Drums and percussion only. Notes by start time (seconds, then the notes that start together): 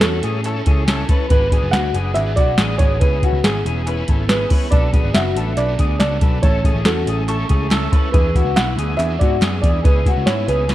0.01 snare, clap, closed hi-hat
0.23 closed hi-hat
0.44 clap, closed hi-hat
0.66 kick, closed hi-hat
0.88 snare, clap, closed hi-hat
1.09 kick, closed hi-hat
1.30 kick, closed hi-hat
1.52 kick, closed hi-hat
1.73 snare, clap, closed hi-hat
1.95 closed hi-hat
2.15 clap, closed hi-hat
2.37 kick, closed hi-hat
2.58 snare, clap, closed hi-hat
2.79 kick, closed hi-hat
3.01 kick, closed hi-hat
3.23 kick, closed hi-hat
3.44 snare, clap, closed hi-hat
3.66 closed hi-hat
3.87 clap, closed hi-hat
4.08 kick, closed hi-hat
4.29 snare, clap, closed hi-hat
4.50 kick, open hi-hat
4.72 kick, closed hi-hat
4.93 kick, closed hi-hat
5.15 snare, clap, closed hi-hat
5.37 closed hi-hat
5.57 clap, closed hi-hat
5.79 kick, closed hi-hat
6.00 snare, clap, closed hi-hat
6.21 kick, closed hi-hat
6.43 kick, closed hi-hat
6.64 kick, closed hi-hat
6.85 snare, clap, closed hi-hat
7.07 closed hi-hat
7.29 clap, closed hi-hat
7.49 kick, closed hi-hat
7.71 snare, clap, closed hi-hat
7.93 kick, closed hi-hat
8.14 kick, closed hi-hat
8.35 kick, closed hi-hat
8.57 snare, clap, closed hi-hat
8.79 closed hi-hat
9.00 clap, closed hi-hat
9.21 kick, closed hi-hat
9.42 snare, clap, closed hi-hat
9.63 kick, closed hi-hat
9.85 kick, closed hi-hat
10.06 kick, closed hi-hat
10.27 snare, clap, closed hi-hat
10.48 closed hi-hat
10.69 snare, clap, closed hi-hat